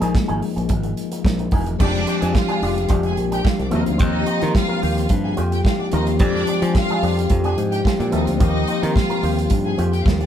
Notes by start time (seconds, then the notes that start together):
Already playing: F3 G#3 A#3 D#4 F4 G#4 D#5
0.01 A#1 A#3 D#4 G#4, closed hi-hat
0.14 muted clean electric guitar stroke, kick, snare
0.28 G#1 A#3 D#4 G#4, closed hi-hat
0.42 muted clean electric guitar stroke, open hi-hat
0.56 A#1, muted clean electric guitar stroke, closed hi-hat
0.69 G#1, muted clean electric guitar stroke, kick, closed hi-hat
0.83 muted clean electric guitar stroke, closed hi-hat
0.97 closed hi-hat
1.12 muted clean electric guitar stroke, closed hi-hat
1.25 A#1, kick, snare
1.39 muted clean electric guitar stroke, closed hi-hat
1.51 E1 A#3 D#4 G#4, kick, open hi-hat
1.66 muted clean electric guitar stroke, closed hi-hat
1.78 F1 F3 G#3 C4 D4 G4 D5, kick, crash
1.95 closed hi-hat
2.07 G#3 D4 G4, closed hi-hat
2.21 F2 G#3 D4 G#4, closed hi-hat
2.34 F4 F5, muted clean electric guitar stroke, kick, snare
2.48 G#3 D4 G#4, closed hi-hat
2.62 F1 G#3 D4 G4, open hi-hat
2.76 muted clean electric guitar stroke, closed hi-hat
2.89 F1 G#3 D4 G4, kick, closed hi-hat
3.03 G#4 G#5, muted clean electric guitar stroke, closed hi-hat
3.17 A#1, muted clean electric guitar stroke, closed hi-hat
3.31 G#3 D4 G4 G5, closed hi-hat
3.44 F4 F5, muted clean electric guitar stroke, kick, snare
3.59 C2 D4 D5, muted clean electric guitar stroke, closed hi-hat
3.70 D#2 F3 A#3 C4 D#4 F4 F#4 G4 A#4 D#5, closed hi-hat
3.80 G4
3.86 D2 F4 F5, muted clean electric guitar stroke, closed hi-hat
3.98 D#2 C4 D#4 F4 G4 D#5, kick, closed hi-hat
4.26 C4 F4 G4, closed hi-hat
4.41 D#3 C4 F4 A#4, closed hi-hat
4.54 F4 F5, muted clean electric guitar stroke, kick, snare
4.68 C4 F4 A#4
4.82 D#2 C4 F4 G4, open hi-hat
4.96 muted clean electric guitar stroke, closed hi-hat
5.09 G2, muted clean electric guitar stroke, kick, closed hi-hat
5.24 G#4 G#5, muted clean electric guitar stroke
5.37 F2 C4 F4 G4, closed hi-hat
5.52 G4 G5, muted clean electric guitar stroke, closed hi-hat
5.64 F4 F5, muted clean electric guitar stroke, kick, snare
5.79 D4 D5, muted clean electric guitar stroke
5.91 D#2 F3 A#3 C4 D#4 F4 A#4 D#5, closed hi-hat
6.07 F4 F5, muted clean electric guitar stroke, closed hi-hat
6.18 F2 F3 G#3 C4 D4 G4 D5, kick, closed hi-hat
6.36 snare
6.47 G#3 D4 G4, closed hi-hat
6.62 F3 G#3 D4 G#4, closed hi-hat
6.74 F4 F5, muted clean electric guitar stroke, kick, snare
6.89 G#3 D4 G#4, closed hi-hat
7.03 F2 G#3 D4 G4, open hi-hat
7.17 muted clean electric guitar stroke, closed hi-hat
7.30 F2, muted clean electric guitar stroke, kick, closed hi-hat
7.44 G#3 D4 G4 G#4 G#5, closed hi-hat
7.57 G#2, muted clean electric guitar stroke, closed hi-hat
7.71 G4 G5, muted clean electric guitar stroke, closed hi-hat
7.85 F4 F5, muted clean electric guitar stroke, kick, snare
7.99 A#2 D4 D5, muted clean electric guitar stroke, closed hi-hat
8.12 D#2 F3 A#3 C4 D#4 F4 F#4 A#4 D#5, closed hi-hat
8.21 G4
8.26 D2 F4 F5, muted clean electric guitar stroke, closed hi-hat
8.39 D#2 C4 D#4 F4 G4 D#5, kick, closed hi-hat
8.67 C4 F4 G4, closed hi-hat
8.82 D#3 C4 F4 A#4, closed hi-hat
8.94 F4 F5, muted clean electric guitar stroke, kick, snare
9.10 C4 F4 A#4, closed hi-hat
9.23 D#2 C4 F4 G4, open hi-hat
9.38 muted clean electric guitar stroke, closed hi-hat
9.50 G2, muted clean electric guitar stroke, kick, closed hi-hat
9.65 G#4 G#5, muted clean electric guitar stroke
9.78 F2 C4 F4 G4, closed hi-hat
9.92 G4 G5, muted clean electric guitar stroke, closed hi-hat
10.05 D#2 F4 F5, muted clean electric guitar stroke, kick, snare
10.20 D4 D5, muted clean electric guitar stroke, closed hi-hat